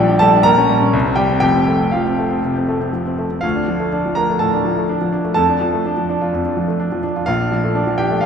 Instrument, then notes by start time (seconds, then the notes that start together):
grand piano
Already playing: A#1 F3 G3 D4 G4 G5
0.09 D4
0.19 G3 A4 A5
0.34 D4
0.43 A#1 A#4 A#5
0.58 C#4
0.69 G3
0.82 C#4
0.93 C2
1.06 C4
1.16 G3 G4 G5
1.30 C4
1.40 F1 F2 G4 G5
1.55 C4
1.68 A3
1.81 C4
1.92 F3 F4 F5
2.06 C4
2.19 A3
2.31 C4
2.44 C3
2.56 C4
2.68 A3
2.81 C4
2.93 F3
3.06 C4
3.19 A3
3.31 C4
3.41 D2 F4 F5
3.56 D4
3.68 F3
3.80 A3
3.93 D4
4.06 F3
4.15 D4 A#4 A#5
4.30 A3
4.39 A2 A4 A5
4.53 D4
4.65 F3
4.77 A3
4.89 D4
5.01 F3
5.12 D4
5.24 A3
5.34 F2 A4 A5
5.49 D4
5.61 F3
5.73 A3
5.86 D4
5.97 F3
6.09 D4
6.22 F4
6.34 F2
6.45 D4
6.57 F3
6.68 A3
6.80 D4
6.92 F3
7.03 D4
7.16 F4
7.26 A#1 F4 F5
7.40 D4
7.52 F3
7.64 A3
7.75 D4
7.87 F3
7.98 D4 G4 G5
8.11 A3
8.21 F4 F5